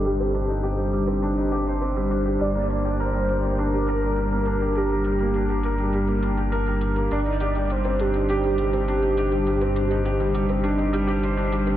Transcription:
<<
  \new Staff \with { instrumentName = "Soft synth lead" } { \time 4/4 \key c \dorian \tempo 4 = 102 g'2 r2 | d''4 c''4 bes'2 | g'2 r2 | d''4 c''8 g'2~ g'8~ |
g'2. r4 | }
  \new Staff \with { instrumentName = "Felt piano" } { \time 4/4 \key c \dorian g16 c'16 d'16 ees'16 g'16 g16 g16 c'16 d'16 ees'16 g'16 c''16 c'16 g16 d'16 g'16 | g16 bes16 d'16 g'16 bes'16 g16 g16 bes16 d'16 g'16 bes'16 g16 g16 bes16 d'16 g'16 | bes'16 g16 g16 bes16 d'16 g'16 bes'16 g16 g16 bes16 d'16 g'16 bes'16 g16 g16 bes16 | d'16 ees'16 g'16 g16 g16 c'16 d'16 ees'16 g'16 g16 g16 c'16 d'16 ees'16 g'16 g16 |
g16 c'16 d'16 ees'16 g'16 g16 g16 c'16 d'16 ees'16 g16 g'16 c''16 d'16 g16 c'16 | }
  \new Staff \with { instrumentName = "Detuned saw bass" } { \clef bass \time 4/4 \key c \dorian g,,1 | g,,1~ | g,,1 | g,,1~ |
g,,1 | }
  \new DrumStaff \with { instrumentName = "Drums" } \drummode { \time 4/4 hh16 hh16 hh16 hh16 hh16 hh16 hh16 hh16 hh16 hh16 hh16 hh16 hh16 hh16 hh16 hh16 | hh16 hh16 hh16 hh16 hh16 hh16 hh16 hh16 hh16 hh16 hh16 hh16 hh16 hh16 hh16 hh16 | hh16 hh16 hh16 hh16 hh16 hh16 hh16 hh16 hh16 hh16 hh16 hh16 hh16 hh16 hh16 hh16 | hh16 hh16 hh16 hh16 hh16 hh16 hh16 hh16 hh16 hh16 hh16 hh16 hh16 hh16 hh16 hh16 |
hh16 hh16 hh16 hh16 hh16 hh16 hh16 hh16 hh16 hh16 hh16 hh16 hh16 hh16 hh16 hh16 | }
>>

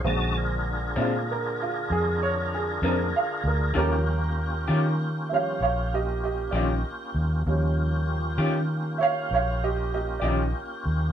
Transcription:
<<
  \new Staff \with { instrumentName = "Upright piano" } { \time 12/8 \key ees \major \tempo 4. = 65 r4. <e' f'>8 bes'8 f'8 aes'8 des''8 aes'8 bes'8 f''8 bes'8 | <a' bes'>2 r8 <des'' e'' f''>8 <des'' f''>8 <g' ees''>8 <g' ees''>8 <d'' ees''>8 r4 | r2 r8 <des'' e'' f''>8 <des'' f''>8 <g' ees''>8 <g' ees''>8 <d'' ees''>8 r4 | }
  \new Staff \with { instrumentName = "Upright piano" } { \clef bass \time 12/8 \key ees \major <d aes c''>1. | <f g des'>8 r2 <f g des'>8 r2. | <f g des'>4. r1 r8 | }
  \new Staff \with { instrumentName = "Tonewheel organ" } { \time 12/8 \key ees \major <des' ges' ees'' a''>8 <d' f' aes' bes'>1~ <d' f' aes' bes'>4. | <bes des' f' g'>1. | <bes des' f' g'>1. | }
  \new Staff \with { instrumentName = "Clean electric guitar" } { \time 12/8 \key ees \major r4. <bes, aes c' d'>8 r2 r8 <bes, aes c' d'>8 r4 | <ees des' f' g'>8 r4 <ees des' f' g'>8 r2 r8 <ees des' f' g'>8 r4 | r4. <ees des' f' g'>8 r2 r8 <ees des' f' g'>8 r4 | }
  \new Staff \with { instrumentName = "Fingered electric bass" } { \clef bass \time 12/8 \key ees \major bes,,4. bes,4. f,4. f,8 r8 d,8 | ees,4. ees4. bes,,4. bes,,8 r8 ees,8 | ees,4. ees4. bes,,4. bes,,8 r8 ees,8 | }
>>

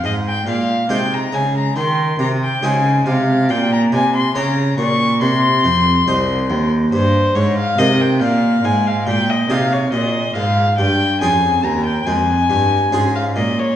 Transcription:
<<
  \new Staff \with { instrumentName = "Violin" } { \time 4/4 \key aes \major \tempo 4 = 70 ees''16 g''16 f''8 g''16 bes''16 aes''16 bes''16 c'''8 bes''16 g''16 aes''8 f''8 | g''16 bes''16 aes''16 c'''16 bes''8 des'''8 c'''4.~ c'''16 r16 | \key des \lydian c''8 des''16 f''16 ees''16 g''16 f''8 aes''16 f''16 g''16 ees''16 f''16 des''16 ees''8 | f''8 g''8 aes''8 bes''16 g''16 aes''4~ aes''16 f''16 ees''16 des''16 | }
  \new Staff \with { instrumentName = "Harpsichord" } { \time 4/4 \key aes \major r4 <aes ees' c''>4 r4 <aes ees' c''>4 | r4 <des' des''>4 r4 <ees' c''>4 | \key des \lydian r4 <ees' bes'>4 r4 <ees' aes'>4 | r4 <des' f' aes'>4 aes4 <des' f' aes'>4 | }
  \new Staff \with { instrumentName = "Harpsichord" } { \clef bass \time 4/4 \key aes \major aes,8 bes,8 c8 des8 ees8 c8 des8 c8 | bes,8 c8 des8 bes,8 c8 f,8 c,8 ees,8 | \key des \lydian g,8 aes,8 c8 bes,8 aes,8 bes,8 c8 bes,8 | aes,8 g,8 f,8 ees,8 f,8 g,8 aes,8 bes,8 | }
  \new Staff \with { instrumentName = "Cello" } { \clef bass \time 4/4 \key aes \major aes,8 bes,8 c8 des8 ees8 c8 des8 c8 | bes,8 c8 des8 bes,8 c8 f,8 c,8 ees,8 | \key des \lydian g,8 aes,8 c8 bes,8 aes,8 bes,8 c8 bes,8 | aes,8 g,8 f,8 ees,8 f,8 g,8 aes,8 bes,8 | }
>>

